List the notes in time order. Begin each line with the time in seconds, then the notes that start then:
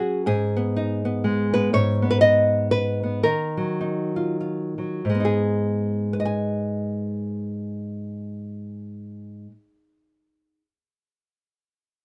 Already playing: F#3 C#4 F#4 G#4
0.26 G#2 G#4
0.57 B3
0.76 D#4
1.05 B3
1.24 G#3
1.54 B3 B4
1.73 G#2 C#5
2.02 B3
2.11 B4
2.21 D#5
2.71 B4
3.03 B3
3.23 D#3 A#4
3.57 F#3
3.81 D#4
4.16 F4
4.41 F4
4.78 F#3
5.05 G#2
5.10 G#3
5.15 B3
5.20 D#4
5.25 G#4
6.13 B4
6.20 D#5
6.25 G#5